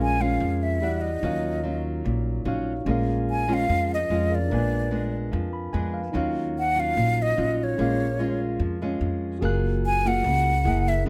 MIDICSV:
0, 0, Header, 1, 5, 480
1, 0, Start_track
1, 0, Key_signature, -5, "minor"
1, 0, Tempo, 409836
1, 1439, Time_signature, 4, 2, 24, 8
1, 12991, End_track
2, 0, Start_track
2, 0, Title_t, "Flute"
2, 0, Program_c, 0, 73
2, 26, Note_on_c, 0, 80, 83
2, 250, Note_on_c, 0, 77, 84
2, 268, Note_off_c, 0, 80, 0
2, 737, Note_on_c, 0, 76, 74
2, 755, Note_off_c, 0, 77, 0
2, 1184, Note_on_c, 0, 75, 75
2, 1201, Note_off_c, 0, 76, 0
2, 2152, Note_off_c, 0, 75, 0
2, 3865, Note_on_c, 0, 80, 84
2, 4140, Note_on_c, 0, 77, 96
2, 4158, Note_off_c, 0, 80, 0
2, 4591, Note_off_c, 0, 77, 0
2, 4615, Note_on_c, 0, 75, 74
2, 5093, Note_on_c, 0, 74, 73
2, 5111, Note_off_c, 0, 75, 0
2, 6027, Note_off_c, 0, 74, 0
2, 7715, Note_on_c, 0, 78, 89
2, 7963, Note_on_c, 0, 77, 95
2, 7980, Note_off_c, 0, 78, 0
2, 8458, Note_on_c, 0, 75, 81
2, 8476, Note_off_c, 0, 77, 0
2, 8941, Note_on_c, 0, 73, 75
2, 8959, Note_off_c, 0, 75, 0
2, 9870, Note_off_c, 0, 73, 0
2, 11549, Note_on_c, 0, 80, 100
2, 11799, Note_on_c, 0, 78, 105
2, 11816, Note_off_c, 0, 80, 0
2, 12745, Note_on_c, 0, 76, 85
2, 12763, Note_off_c, 0, 78, 0
2, 12971, Note_off_c, 0, 76, 0
2, 12991, End_track
3, 0, Start_track
3, 0, Title_t, "Tine electric piano"
3, 0, Program_c, 1, 4
3, 0, Control_c, 1, 64, 127
3, 0, Note_on_c, 1, 61, 49
3, 0, Note_on_c, 1, 68, 49
3, 0, Note_on_c, 1, 70, 52
3, 0, Note_on_c, 1, 77, 63
3, 917, Note_off_c, 1, 61, 0
3, 928, Note_off_c, 1, 68, 0
3, 942, Note_off_c, 1, 70, 0
3, 946, Note_on_c, 1, 64, 48
3, 952, Note_off_c, 1, 77, 0
3, 956, Note_on_c, 1, 67, 44
3, 970, Note_on_c, 1, 74, 43
3, 976, Control_c, 1, 64, 0
3, 981, Note_on_c, 1, 78, 52
3, 1145, Control_c, 1, 64, 127
3, 1406, Note_on_c, 1, 63, 43
3, 1433, Note_off_c, 1, 64, 0
3, 1438, Note_off_c, 1, 67, 0
3, 1445, Note_off_c, 1, 74, 0
3, 1450, Note_off_c, 1, 78, 0
3, 1451, Note_on_c, 1, 73, 45
3, 1456, Control_c, 1, 64, 0
3, 1474, Note_on_c, 1, 77, 48
3, 1689, Control_c, 1, 64, 127
3, 2834, Note_off_c, 1, 63, 0
3, 2857, Note_off_c, 1, 73, 0
3, 2869, Note_off_c, 1, 77, 0
3, 2872, Note_on_c, 1, 63, 40
3, 2887, Note_on_c, 1, 66, 43
3, 2898, Note_on_c, 1, 73, 43
3, 2907, Note_on_c, 1, 77, 49
3, 3340, Note_on_c, 1, 61, 51
3, 3356, Note_off_c, 1, 63, 0
3, 3364, Note_off_c, 1, 66, 0
3, 3367, Note_on_c, 1, 68, 48
3, 3369, Note_off_c, 1, 73, 0
3, 3374, Note_off_c, 1, 77, 0
3, 3375, Control_c, 1, 64, 0
3, 3385, Note_on_c, 1, 70, 50
3, 3408, Note_on_c, 1, 77, 62
3, 3601, Control_c, 1, 64, 127
3, 4997, Note_off_c, 1, 61, 0
3, 5011, Note_off_c, 1, 68, 0
3, 5019, Note_off_c, 1, 70, 0
3, 5023, Note_on_c, 1, 61, 31
3, 5031, Note_off_c, 1, 77, 0
3, 5037, Note_on_c, 1, 68, 30
3, 5050, Note_on_c, 1, 70, 28
3, 5058, Note_on_c, 1, 77, 40
3, 5245, Note_on_c, 1, 62, 43
3, 5258, Note_off_c, 1, 70, 0
3, 5272, Note_off_c, 1, 61, 0
3, 5272, Note_on_c, 1, 70, 44
3, 5279, Note_off_c, 1, 68, 0
3, 5289, Note_off_c, 1, 77, 0
3, 5295, Note_on_c, 1, 71, 44
3, 5296, Control_c, 1, 64, 0
3, 5323, Note_on_c, 1, 80, 54
3, 5515, Control_c, 1, 64, 127
3, 6478, Note_on_c, 1, 83, 49
3, 6695, Note_off_c, 1, 80, 0
3, 6702, Note_off_c, 1, 83, 0
3, 6709, Note_on_c, 1, 80, 51
3, 6937, Note_off_c, 1, 80, 0
3, 6954, Note_on_c, 1, 77, 46
3, 7144, Note_off_c, 1, 62, 0
3, 7157, Note_off_c, 1, 70, 0
3, 7167, Note_on_c, 1, 63, 58
3, 7169, Note_off_c, 1, 71, 0
3, 7180, Note_off_c, 1, 77, 0
3, 7211, Note_on_c, 1, 73, 53
3, 7215, Control_c, 1, 64, 0
3, 7228, Note_on_c, 1, 77, 61
3, 7393, Control_c, 1, 64, 127
3, 9064, Note_off_c, 1, 63, 0
3, 9083, Note_on_c, 1, 61, 42
3, 9087, Note_off_c, 1, 73, 0
3, 9095, Note_off_c, 1, 77, 0
3, 9107, Note_on_c, 1, 68, 40
3, 9127, Note_on_c, 1, 70, 41
3, 9136, Control_c, 1, 64, 0
3, 9150, Note_on_c, 1, 77, 54
3, 9322, Control_c, 1, 64, 127
3, 10982, Note_off_c, 1, 61, 0
3, 10994, Note_off_c, 1, 68, 0
3, 10999, Note_on_c, 1, 66, 54
3, 11004, Note_off_c, 1, 70, 0
3, 11016, Note_off_c, 1, 77, 0
3, 11022, Note_on_c, 1, 68, 55
3, 11046, Note_on_c, 1, 70, 49
3, 11054, Control_c, 1, 64, 0
3, 11070, Note_on_c, 1, 90, 61
3, 11291, Control_c, 1, 64, 127
3, 12429, Note_off_c, 1, 66, 0
3, 12440, Note_off_c, 1, 68, 0
3, 12452, Note_off_c, 1, 70, 0
3, 12465, Note_off_c, 1, 90, 0
3, 12471, Note_on_c, 1, 64, 59
3, 12481, Note_on_c, 1, 68, 57
3, 12492, Note_on_c, 1, 70, 49
3, 12493, Control_c, 1, 64, 0
3, 12504, Note_on_c, 1, 78, 65
3, 12669, Control_c, 1, 64, 127
3, 12936, Note_on_c, 1, 61, 50
3, 12941, Note_off_c, 1, 68, 0
3, 12954, Note_off_c, 1, 64, 0
3, 12955, Note_on_c, 1, 68, 44
3, 12964, Note_off_c, 1, 70, 0
3, 12970, Note_off_c, 1, 78, 0
3, 12970, Control_c, 1, 64, 0
3, 12991, Note_off_c, 1, 61, 0
3, 12991, Note_off_c, 1, 68, 0
3, 12991, End_track
4, 0, Start_track
4, 0, Title_t, "Nylon-string guitar"
4, 0, Program_c, 2, 24
4, 0, Note_on_c, 2, 46, 48
4, 0, Note_on_c, 2, 56, 54
4, 0, Note_on_c, 2, 61, 49
4, 0, Note_on_c, 2, 65, 53
4, 200, Note_off_c, 2, 56, 0
4, 203, Note_off_c, 2, 61, 0
4, 207, Note_off_c, 2, 65, 0
4, 230, Note_on_c, 2, 56, 53
4, 237, Note_on_c, 2, 61, 53
4, 244, Note_on_c, 2, 65, 58
4, 451, Note_off_c, 2, 46, 0
4, 460, Note_on_c, 2, 53, 42
4, 917, Note_off_c, 2, 56, 0
4, 920, Note_off_c, 2, 61, 0
4, 923, Note_off_c, 2, 65, 0
4, 926, Note_off_c, 2, 53, 0
4, 957, Note_on_c, 2, 55, 46
4, 967, Note_on_c, 2, 62, 55
4, 971, Note_on_c, 2, 66, 54
4, 1281, Note_off_c, 2, 55, 0
4, 1286, Note_off_c, 2, 62, 0
4, 1288, Note_off_c, 2, 66, 0
4, 1436, Note_on_c, 2, 51, 55
4, 1443, Note_on_c, 2, 54, 54
4, 1443, Note_on_c, 2, 61, 49
4, 1449, Note_on_c, 2, 65, 59
4, 1882, Note_off_c, 2, 54, 0
4, 1884, Note_off_c, 2, 61, 0
4, 1885, Note_off_c, 2, 65, 0
4, 1915, Note_on_c, 2, 54, 53
4, 1924, Note_on_c, 2, 61, 50
4, 1929, Note_on_c, 2, 65, 48
4, 2375, Note_off_c, 2, 51, 0
4, 2391, Note_on_c, 2, 46, 45
4, 2841, Note_off_c, 2, 54, 0
4, 2842, Note_off_c, 2, 61, 0
4, 2843, Note_off_c, 2, 65, 0
4, 2872, Note_on_c, 2, 54, 59
4, 2872, Note_on_c, 2, 61, 52
4, 2877, Note_on_c, 2, 65, 54
4, 3184, Note_off_c, 2, 61, 0
4, 3186, Note_off_c, 2, 54, 0
4, 3187, Note_off_c, 2, 65, 0
4, 3332, Note_off_c, 2, 46, 0
4, 3354, Note_on_c, 2, 46, 53
4, 3356, Note_on_c, 2, 56, 57
4, 3363, Note_on_c, 2, 61, 47
4, 3369, Note_on_c, 2, 65, 55
4, 4039, Note_off_c, 2, 56, 0
4, 4044, Note_off_c, 2, 61, 0
4, 4046, Note_off_c, 2, 65, 0
4, 4075, Note_on_c, 2, 56, 60
4, 4083, Note_on_c, 2, 61, 63
4, 4085, Note_on_c, 2, 65, 63
4, 4280, Note_off_c, 2, 56, 0
4, 4282, Note_off_c, 2, 61, 0
4, 4285, Note_off_c, 2, 65, 0
4, 4294, Note_off_c, 2, 46, 0
4, 4318, Note_on_c, 2, 56, 42
4, 4324, Note_on_c, 2, 53, 44
4, 4327, Note_on_c, 2, 61, 44
4, 4331, Note_on_c, 2, 65, 52
4, 4629, Note_off_c, 2, 56, 0
4, 4631, Note_off_c, 2, 61, 0
4, 4633, Note_off_c, 2, 65, 0
4, 4806, Note_on_c, 2, 56, 58
4, 4812, Note_on_c, 2, 61, 48
4, 4818, Note_on_c, 2, 65, 59
4, 5113, Note_off_c, 2, 56, 0
4, 5116, Note_off_c, 2, 61, 0
4, 5117, Note_off_c, 2, 65, 0
4, 5259, Note_off_c, 2, 53, 0
4, 5291, Note_on_c, 2, 46, 54
4, 5291, Note_on_c, 2, 56, 51
4, 5293, Note_on_c, 2, 59, 47
4, 5301, Note_on_c, 2, 62, 62
4, 5727, Note_off_c, 2, 56, 0
4, 5729, Note_off_c, 2, 59, 0
4, 5731, Note_off_c, 2, 62, 0
4, 5750, Note_on_c, 2, 56, 55
4, 5758, Note_on_c, 2, 59, 48
4, 5763, Note_on_c, 2, 62, 57
4, 6222, Note_off_c, 2, 46, 0
4, 6225, Note_on_c, 2, 53, 49
4, 6400, Note_off_c, 2, 56, 0
4, 6404, Note_off_c, 2, 59, 0
4, 6407, Note_off_c, 2, 62, 0
4, 6711, Note_on_c, 2, 56, 50
4, 6718, Note_on_c, 2, 59, 53
4, 6721, Note_on_c, 2, 62, 53
4, 7025, Note_off_c, 2, 56, 0
4, 7028, Note_off_c, 2, 59, 0
4, 7029, Note_off_c, 2, 62, 0
4, 7169, Note_off_c, 2, 53, 0
4, 7178, Note_on_c, 2, 51, 50
4, 7185, Note_on_c, 2, 54, 51
4, 7187, Note_on_c, 2, 61, 53
4, 7195, Note_on_c, 2, 65, 53
4, 7669, Note_off_c, 2, 54, 0
4, 7671, Note_off_c, 2, 61, 0
4, 7673, Note_off_c, 2, 65, 0
4, 7912, Note_on_c, 2, 54, 60
4, 7919, Note_on_c, 2, 61, 58
4, 7922, Note_on_c, 2, 65, 62
4, 8125, Note_off_c, 2, 51, 0
4, 8148, Note_on_c, 2, 46, 48
4, 8598, Note_off_c, 2, 54, 0
4, 8600, Note_off_c, 2, 61, 0
4, 8602, Note_off_c, 2, 65, 0
4, 8629, Note_on_c, 2, 54, 54
4, 8634, Note_on_c, 2, 61, 52
4, 8640, Note_on_c, 2, 65, 58
4, 9076, Note_off_c, 2, 54, 0
4, 9079, Note_off_c, 2, 61, 0
4, 9080, Note_off_c, 2, 65, 0
4, 9089, Note_off_c, 2, 46, 0
4, 9110, Note_on_c, 2, 56, 48
4, 9114, Note_on_c, 2, 46, 53
4, 9122, Note_on_c, 2, 61, 51
4, 9123, Note_on_c, 2, 65, 57
4, 9424, Note_off_c, 2, 56, 0
4, 9428, Note_off_c, 2, 61, 0
4, 9430, Note_off_c, 2, 65, 0
4, 9591, Note_on_c, 2, 56, 51
4, 9601, Note_on_c, 2, 61, 51
4, 9604, Note_on_c, 2, 65, 62
4, 10053, Note_off_c, 2, 46, 0
4, 10082, Note_on_c, 2, 53, 44
4, 10276, Note_off_c, 2, 56, 0
4, 10281, Note_off_c, 2, 65, 0
4, 10282, Note_off_c, 2, 61, 0
4, 10326, Note_on_c, 2, 56, 53
4, 10334, Note_on_c, 2, 61, 55
4, 10337, Note_on_c, 2, 65, 54
4, 11004, Note_off_c, 2, 56, 0
4, 11006, Note_off_c, 2, 61, 0
4, 11009, Note_off_c, 2, 65, 0
4, 11016, Note_off_c, 2, 53, 0
4, 11029, Note_on_c, 2, 58, 58
4, 11033, Note_on_c, 2, 54, 48
4, 11039, Note_on_c, 2, 65, 51
4, 11048, Note_on_c, 2, 68, 60
4, 11715, Note_off_c, 2, 58, 0
4, 11721, Note_off_c, 2, 65, 0
4, 11723, Note_off_c, 2, 68, 0
4, 11772, Note_on_c, 2, 58, 56
4, 11777, Note_on_c, 2, 65, 61
4, 11782, Note_on_c, 2, 68, 61
4, 11967, Note_off_c, 2, 58, 0
4, 11968, Note_off_c, 2, 65, 0
4, 11971, Note_off_c, 2, 54, 0
4, 11971, Note_off_c, 2, 68, 0
4, 12003, Note_on_c, 2, 49, 47
4, 12008, Note_on_c, 2, 58, 43
4, 12017, Note_on_c, 2, 65, 43
4, 12019, Note_on_c, 2, 68, 45
4, 12313, Note_off_c, 2, 58, 0
4, 12315, Note_off_c, 2, 65, 0
4, 12317, Note_off_c, 2, 68, 0
4, 12456, Note_off_c, 2, 49, 0
4, 12484, Note_on_c, 2, 58, 52
4, 12489, Note_on_c, 2, 64, 57
4, 12498, Note_on_c, 2, 68, 57
4, 12790, Note_off_c, 2, 58, 0
4, 12791, Note_off_c, 2, 64, 0
4, 12797, Note_off_c, 2, 68, 0
4, 12955, Note_on_c, 2, 46, 54
4, 12991, Note_off_c, 2, 46, 0
4, 12991, End_track
5, 0, Start_track
5, 0, Title_t, "Upright bass"
5, 0, Program_c, 3, 32
5, 0, Note_on_c, 3, 34, 80
5, 430, Note_off_c, 3, 34, 0
5, 471, Note_on_c, 3, 41, 81
5, 949, Note_off_c, 3, 41, 0
5, 949, Note_on_c, 3, 40, 72
5, 1400, Note_off_c, 3, 40, 0
5, 1438, Note_on_c, 3, 39, 82
5, 2352, Note_off_c, 3, 39, 0
5, 2405, Note_on_c, 3, 34, 76
5, 2849, Note_off_c, 3, 34, 0
5, 2874, Note_on_c, 3, 34, 80
5, 3324, Note_off_c, 3, 34, 0
5, 3351, Note_on_c, 3, 34, 80
5, 4269, Note_off_c, 3, 34, 0
5, 4326, Note_on_c, 3, 41, 79
5, 4770, Note_off_c, 3, 41, 0
5, 4803, Note_on_c, 3, 41, 75
5, 5248, Note_off_c, 3, 41, 0
5, 5284, Note_on_c, 3, 34, 76
5, 6195, Note_off_c, 3, 34, 0
5, 6242, Note_on_c, 3, 41, 85
5, 6688, Note_off_c, 3, 41, 0
5, 6720, Note_on_c, 3, 41, 76
5, 7167, Note_off_c, 3, 41, 0
5, 7199, Note_on_c, 3, 39, 79
5, 8112, Note_off_c, 3, 39, 0
5, 8163, Note_on_c, 3, 34, 78
5, 8608, Note_off_c, 3, 34, 0
5, 8643, Note_on_c, 3, 34, 72
5, 9088, Note_off_c, 3, 34, 0
5, 9121, Note_on_c, 3, 34, 81
5, 10033, Note_off_c, 3, 34, 0
5, 10067, Note_on_c, 3, 41, 81
5, 10519, Note_off_c, 3, 41, 0
5, 10550, Note_on_c, 3, 41, 78
5, 11000, Note_off_c, 3, 41, 0
5, 11036, Note_on_c, 3, 30, 82
5, 11950, Note_off_c, 3, 30, 0
5, 11993, Note_on_c, 3, 37, 80
5, 12474, Note_on_c, 3, 30, 75
5, 12491, Note_off_c, 3, 37, 0
5, 12922, Note_off_c, 3, 30, 0
5, 12952, Note_on_c, 3, 34, 77
5, 12991, Note_off_c, 3, 34, 0
5, 12991, End_track
0, 0, End_of_file